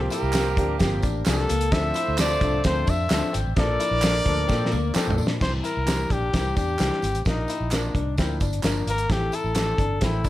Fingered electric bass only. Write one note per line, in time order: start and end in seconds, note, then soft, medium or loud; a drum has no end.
0.22 0.57 C2 medium
0.57 0.82 D2 loud
0.81 0.99 G1 loud
1.03 1.22 A1 loud
1.27 1.46 C2 loud
1.50 1.69 C#2 medium
1.72 1.91 D2 loud
2.08 2.36 D2 loud
2.41 2.60 C2 medium
2.65 2.84 D2 loud
2.88 3.07 F2 loud
3.11 3.21 D2 medium
3.35 3.44 G#1 medium
3.46 3.55 A1 medium
3.57 3.76 A#1 loud
3.91 4.19 A#1 medium
4.26 4.45 D2 medium
4.50 4.74 A#2 loud
4.73 4.91 D2 medium
4.96 muted fingered electric bass stroke soft
5.07 5.16 A#1 medium
5.20 5.38 A#2 loud
5.41 5.60 C2 loud
5.77 6.05 C2 medium
6.10 6.29 A#1 medium
6.34 6.52 C2 medium
6.57 6.76 E2 medium
6.80 6.89 C2 medium
7.03 7.12 G#1 medium
7.14 7.24 A1 medium
7.26 7.45 A#1 loud
7.61 7.88 A#1 medium
7.95 8.18 C2 medium
8.18 8.42 D2 loud
8.41 8.59 G1 medium
8.63 8.82 G1 medium
8.87 9.05 G#1 medium
9.10 9.28 A1 medium
9.44 9.72 A1 medium
9.78 9.97 G1 medium
10.02 10.25 A1 medium
10.25 10.29 C2 medium